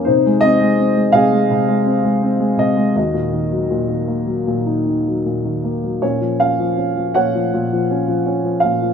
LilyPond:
<<
  \new Staff \with { instrumentName = "Grand piano" } { \time 4/4 \key bes \minor \tempo 4 = 81 << { c''8 ees''4 f''2 ees''8 | ees''2. r4 | des''8 f''4 ges''2 f''8 | } \\ { ees'4. aes'2 r8 | ges'2. r4 | des'4. des''2 r8 | } >> }
  \new Staff \with { instrumentName = "Grand piano" } { \clef bass \time 4/4 \key bes \minor c16 aes16 c'16 aes16 c'16 aes16 c16 aes16 c16 aes16 c'16 aes16 c'16 aes16 c16 aes16 | ees,16 bes,16 ees16 ges16 bes,16 ees16 bes16 ges16 bes,16 ees'16 ees16 ges16 bes,16 ees16 bes16 ges16 | bes,16 f16 des'16 f16 des'16 f16 bes,16 f16 bes,16 f16 des'16 f16 des'16 f16 bes,16 f16 | }
>>